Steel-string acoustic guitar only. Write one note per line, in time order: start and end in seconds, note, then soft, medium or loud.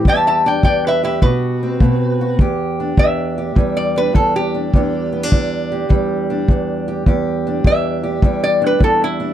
0.00 2.40 G3 medium
0.07 0.64 E2 medium
0.07 1.02 G4 medium
0.46 1.21 D4 medium
0.65 1.23 E2 medium
1.03 1.20 G4 medium
1.23 1.80 B2 medium
1.23 2.20 F#4 medium
1.63 2.38 C4 medium
1.81 2.37 B2 medium
2.21 2.38 F#4 medium
2.40 2.97 E2 medium
2.40 3.37 G4 medium
2.80 3.96 D4 medium
2.97 3.55 E2 medium
3.38 5.71 G4 medium
3.55 4.13 E2 medium
3.55 5.89 G3 medium
3.96 4.54 D4 medium
4.13 4.74 E2 medium
4.54 4.75 D4 medium
4.74 5.31 E2 medium
4.74 5.12 D4 medium
5.12 5.23 B3 medium
5.23 6.29 D4 soft
5.31 5.89 E2 medium
5.72 6.88 G4 medium
5.89 6.48 E2 medium
5.89 8.23 G3 medium
6.30 7.10 D4 medium
6.49 7.06 E2 medium
6.88 7.07 G4 medium
7.07 7.64 E2 medium
7.07 8.03 G4 medium
7.47 8.60 D4 medium
7.65 8.22 E2 medium
8.03 9.34 G4 medium
8.23 8.78 E2 medium
8.23 9.34 G3 medium
8.62 9.19 D4 medium
8.79 9.34 E2 medium
9.20 9.34 D4 medium